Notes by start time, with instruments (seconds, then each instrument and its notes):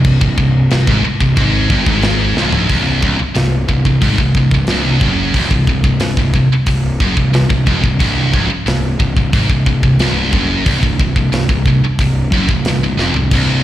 Already playing: picked electric bass C1, distorted electric guitar C2
0.04 kick, crash
0.21 picked electric bass C1, distorted electric guitar C2, kick
0.38 picked electric bass C1, distorted electric guitar C2, kick
0.71 picked electric bass C1, distorted electric guitar C2, snare, crash
0.87 picked electric bass G#1, distorted electric guitar G#2, kick
1.04 muted distorted electric guitar stroke, muted picked electric bass stroke
1.20 picked electric bass C1, distorted electric guitar C2, kick
1.37 picked electric bass G#1, distorted electric guitar G#2, kick, crash
1.69 picked electric bass G1, distorted electric guitar G2, kick
1.86 picked electric bass G#1, distorted electric guitar G#2, kick
2.02 snare, crash
2.35 picked electric bass C1, distorted electric guitar C2, snare
2.52 picked electric bass C#1, distorted electric guitar C#2, floor tom
2.69 picked electric bass C1, distorted electric guitar C2, kick, open hi-hat
3.03 picked electric bass C#1, distorted electric guitar C#2, kick
3.18 muted picked electric bass stroke, muted distorted electric guitar stroke
3.35 picked electric bass C1, distorted electric guitar C2, snare, open hi-hat
3.69 picked electric bass C1, distorted electric guitar C2, kick
3.85 picked electric bass C1, distorted electric guitar C2, kick
4.02 picked electric bass G#1, distorted electric guitar G#2, kick, open hi-hat
4.18 picked electric bass C1, distorted electric guitar C2, kick
4.35 picked electric bass C1, distorted electric guitar C2, kick
4.51 picked electric bass C1, distorted electric guitar C2, kick
4.67 picked electric bass C1, distorted electric guitar C2, snare, open hi-hat
5.01 picked electric bass F#1, distorted electric guitar F#2, kick
5.34 picked electric bass C1, distorted electric guitar C2, kick, open hi-hat
5.50 picked electric bass C1, distorted electric guitar C2, kick
5.67 picked electric bass C1, distorted electric guitar C2, kick
5.83 picked electric bass C1, distorted electric guitar C2, kick
5.99 picked electric bass C1, distorted electric guitar C2, snare, open hi-hat
6.17 picked electric bass C1, distorted electric guitar C2, kick
6.34 picked electric bass C1, distorted electric guitar C2, kick
6.49 muted picked electric bass stroke
6.53 muted distorted electric guitar stroke
6.66 picked electric bass C1, distorted electric guitar C2, kick, open hi-hat
7.00 picked electric bass F#1, distorted electric guitar F#2, kick
7.17 picked electric bass C1, distorted electric guitar C2, kick
7.33 picked electric bass C1, distorted electric guitar C2, snare, open hi-hat
7.50 picked electric bass C1, distorted electric guitar C2, kick
7.66 picked electric bass F1, distorted electric guitar F2, kick
7.83 picked electric bass C1, distorted electric guitar C2, kick
7.99 picked electric bass C1, distorted electric guitar C2, kick, open hi-hat
8.33 picked electric bass C#1, distorted electric guitar C#2, kick
8.49 muted distorted electric guitar stroke, muted picked electric bass stroke
8.66 picked electric bass C1, distorted electric guitar C2, snare, open hi-hat
8.99 picked electric bass C1, distorted electric guitar C2, kick
9.16 picked electric bass C1, distorted electric guitar C2, kick
9.33 picked electric bass G#1, distorted electric guitar G#2, kick, open hi-hat
9.49 picked electric bass C1, distorted electric guitar C2, kick
9.66 picked electric bass C1, distorted electric guitar C2, kick
9.83 picked electric bass C1, distorted electric guitar C2, kick
9.99 picked electric bass C1, distorted electric guitar C2, snare, open hi-hat
10.32 picked electric bass F#1, distorted electric guitar F#2, kick
10.66 picked electric bass C1, distorted electric guitar C2, kick, open hi-hat
10.82 picked electric bass C1, distorted electric guitar C2, kick
10.99 picked electric bass C1, distorted electric guitar C2, kick
11.16 picked electric bass C1, distorted electric guitar C2, kick
11.32 picked electric bass C1, distorted electric guitar C2, snare, open hi-hat
11.48 picked electric bass C1, distorted electric guitar C2, kick
11.65 picked electric bass C1, distorted electric guitar C2, kick
11.82 muted picked electric bass stroke, muted distorted electric guitar stroke
11.99 picked electric bass C1, distorted electric guitar C2, kick, open hi-hat
12.32 picked electric bass F#1, distorted electric guitar F#2, kick
12.49 picked electric bass C1, distorted electric guitar C2, kick
12.64 picked electric bass C1, distorted electric guitar C2, snare, open hi-hat
12.81 picked electric bass C1, distorted electric guitar C2
12.97 picked electric bass F1, distorted electric guitar F2, snare
13.14 picked electric bass C1, distorted electric guitar C2, floor tom
13.31 picked electric bass C1, distorted electric guitar C2, kick, open hi-hat, crash